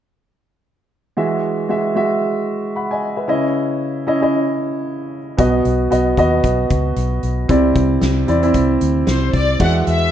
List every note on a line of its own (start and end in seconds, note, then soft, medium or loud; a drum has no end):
1.17 1.92 E3 medium
1.17 1.66 G#3 medium
1.17 1.66 F#4 medium
1.17 1.66 E5 medium
1.69 1.94 G#3 medium
1.69 1.94 F#4 soft
1.69 1.95 E5 medium
1.95 2.94 G#3 medium
1.95 2.94 F#4 medium
1.95 2.49 E5 medium
2.76 2.90 F#5 soft
2.76 2.90 B5 soft
2.91 3.16 D#5 soft
2.91 3.15 G#5 medium
3.16 3.42 B4 soft
3.16 3.41 E5 soft
3.28 4.03 C#3 soft
3.28 4.01 C#4 medium
3.28 4.01 E4 medium
3.28 4.02 D#5 medium
4.07 4.20 C#4 medium
4.07 4.21 E4 medium
4.07 4.21 D#5 medium
4.21 5.17 C#4 medium
4.21 5.18 E4 medium
4.21 5.18 D#5 medium
5.37 5.60 B1 medium
5.37 6.13 B2 medium
5.37 5.87 B3 medium
5.37 5.87 F#4 medium
5.37 5.88 D#5 medium
5.37 kick medium
5.37 closed hi-hat medium
5.65 5.87 B1 medium
5.65 closed hi-hat medium
5.90 6.13 B1 medium
5.90 6.15 B3 medium
5.90 6.15 F#4 medium
5.90 6.16 D#5 medium
5.90 closed hi-hat medium
6.17 6.39 D#2 medium
6.17 7.15 B3 medium
6.17 7.15 F#4 medium
6.17 7.16 D#5 medium
6.17 kick medium
6.17 closed hi-hat medium
6.43 6.66 B1 medium
6.43 kick medium
6.43 closed hi-hat medium
6.70 6.92 C#2 medium
6.70 kick medium
6.70 closed hi-hat medium
6.96 7.18 B1 medium
6.96 closed hi-hat medium
7.23 7.45 B1 medium
7.23 closed hi-hat soft
7.48 7.71 C2 medium
7.48 8.24 C3 medium
7.48 8.22 C4 medium
7.48 8.23 E4 medium
7.48 8.23 D5 medium
7.48 kick medium
7.48 closed hi-hat medium
7.76 7.97 C2 medium
7.76 kick medium
7.76 closed hi-hat medium
8.01 8.23 C2 medium
8.01 snare medium
8.01 closed hi-hat medium
8.27 8.50 E2 medium
8.27 8.41 C4 medium
8.27 8.42 E4 medium
8.27 8.42 D5 medium
8.27 closed hi-hat medium
8.43 9.39 C4 medium
8.43 9.39 E4 medium
8.43 9.39 D5 medium
8.43 closed hi-hat soft
8.54 8.76 C2 medium
8.54 kick medium
8.54 closed hi-hat medium
8.81 9.03 D2 medium
8.81 closed hi-hat medium
9.07 9.29 C2 medium
9.07 9.32 C5 medium
9.07 snare medium
9.07 closed hi-hat medium
9.33 9.55 C2 medium
9.33 9.61 D5 medium
9.33 kick medium
9.33 closed hi-hat soft
9.59 9.81 E2 medium
9.59 10.12 E3 medium
9.59 10.08 G#3 medium
9.59 10.09 F#4 soft
9.59 10.09 E5 medium
9.59 9.73 F#5 medium
9.59 kick medium
9.59 crash medium
9.87 10.08 E2 medium
9.87 10.12 E5 medium
9.87 closed hi-hat medium